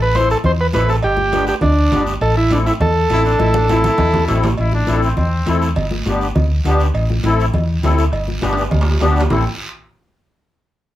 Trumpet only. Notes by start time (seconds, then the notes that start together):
3.12 E4
3.25 D4
3.40 E4
3.56 D4
3.70 E4
3.86 E4
4.60 E4
4.74 D4
5.03 C4
5.16 C4
9.31 C4